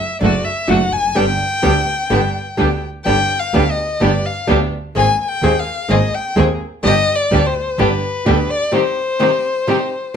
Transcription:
Already playing: E5
0.21 F#1 D3 A3 D4 F#4 D5
0.45 E5
0.67 F#1 D3 A3 D4 F#4 F#5
0.93 F1 G#5
1.15 G1 D3 G3 B3 D4 G4 G5
1.62 D2 D3 G3 B3 D4 G4
2.10 G1 D3 G3 B3 D4 G4
2.57 D2 D3 G3 B3 D4 G4
3.05 G1 D3 G3 B3 D4 G4 G5
3.39 F5
3.53 D2 D3 G3 B3 D4 G4
3.71 D#5
4.00 G1 D3 G3 B3 D4 G4 D5
4.26 F5
4.47 D2 D3 G3 B3 D4 G4
4.95 G#1 D#3 G#3 A#3 C4 G#4 G#5
5.21 G#5
5.28 G5
5.42 D#2 D#3 G#3 A#3 C4 G#4
5.60 F5
5.88 G#1 D#3 G#3 A#3 C4 G#4 D#5
6.14 G5
6.36 D#2 D#3 G#3 A#3 C4 G#4
6.83 G1 D3 G3 B3 D4 G4 D#5
7.16 D5
7.31 D2 D3 G3 B3 D4 G4
7.47 C5
7.78 G1 D3 G3 B3 D4 G4 B4
8.26 D2 D3 G3 B3 D4 G4
8.50 D5
8.71 C3 D#3 G3 C4 D#4 G4 C5
9.19 C3 D#3 G3 C4 D#4 G4
9.67 C3 D#3 G3 C4 D#4 G4

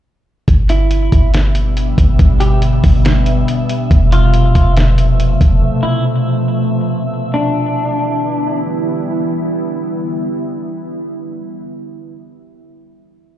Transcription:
0.48 G1 B2 D3 G3 B3 E5, kick, closed hi-hat
0.69 E4, closed hi-hat
0.91 closed hi-hat
1.12 G1, kick, closed hi-hat
1.34 snare, closed hi-hat
1.55 closed hi-hat
1.77 closed hi-hat
1.98 G1, kick, closed hi-hat
2.19 G1, kick, closed hi-hat
2.40 G4, closed hi-hat
2.62 closed hi-hat
2.84 G1, kick, open hi-hat
3.05 snare, closed hi-hat
3.26 closed hi-hat
3.48 closed hi-hat
3.69 closed hi-hat
3.91 F1 C3 F3 A3, kick, closed hi-hat
4.12 F4, closed hi-hat
4.34 closed hi-hat
4.55 F1, kick, closed hi-hat
4.77 snare, closed hi-hat
4.98 closed hi-hat
5.20 closed hi-hat
5.41 F1, kick, closed hi-hat
5.83 E4
7.34 D3 E3 G3 B3 D4 E4

